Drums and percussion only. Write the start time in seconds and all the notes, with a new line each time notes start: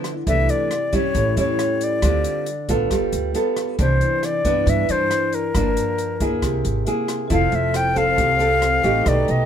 0.04 cross-stick, closed hi-hat
0.27 kick, closed hi-hat
0.49 closed hi-hat
0.71 cross-stick, closed hi-hat
0.93 kick, closed hi-hat
1.15 kick, closed hi-hat
1.37 closed hi-hat
1.59 cross-stick, closed hi-hat
1.81 closed hi-hat
2.02 kick, cross-stick, closed hi-hat
2.24 closed hi-hat
2.46 closed hi-hat
2.69 kick, closed hi-hat
2.91 kick, cross-stick, closed hi-hat
3.13 closed hi-hat
3.35 closed hi-hat
3.56 cross-stick, closed hi-hat
3.79 kick, closed hi-hat
4.01 closed hi-hat
4.23 cross-stick, closed hi-hat
4.45 kick, closed hi-hat
4.67 kick, closed hi-hat
4.89 closed hi-hat
5.11 cross-stick, closed hi-hat
5.32 closed hi-hat
5.55 kick, cross-stick, closed hi-hat
5.77 closed hi-hat
5.98 closed hi-hat
6.20 kick, closed hi-hat
6.42 kick, cross-stick, closed hi-hat
6.65 closed hi-hat
6.86 closed hi-hat
7.08 cross-stick, closed hi-hat
7.30 kick, closed hi-hat
7.52 closed hi-hat
7.74 cross-stick, closed hi-hat
7.96 kick, closed hi-hat
8.18 kick, closed hi-hat
8.40 closed hi-hat
8.62 cross-stick, closed hi-hat
8.84 kick, closed hi-hat
9.06 kick, cross-stick, closed hi-hat
9.28 closed hi-hat